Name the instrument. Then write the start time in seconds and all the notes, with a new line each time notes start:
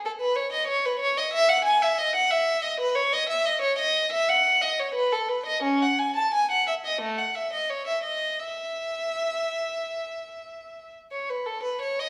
violin
0.05 A4
0.20 B4
0.36 C#5
0.53 D#5
0.68 C#5
0.85 B4
1.00 C#5
1.17 D#5
1.33 E5
1.49 F#5
1.65 G#5
1.82 E5
1.98 D#5
2.16 F#5
2.31 E5
2.62 D#5
2.80 B4
2.95 C#5
3.13 D#5
3.29 E5
3.46 D#5
3.62 C#5
3.79 D#5
4.12 E5
4.29 F#5
4.62 D#5
4.79 C#5
4.94 B4
5.12 A4
5.28 B4
5.46 D#5
5.63 C#4
5.82 F#5
5.99 G#5
6.16 A5
6.34 G#5
6.51 F#5
6.67 E5
6.86 D#5
7.01 A3
7.18 F#5
7.35 E5
7.53 D#5
7.70 C#5
7.88 E5
8.04 D#5
8.40 E5
11.11 C#5
11.29 B4
11.46 A4
11.63 B4
11.82 C#5
11.99 D#5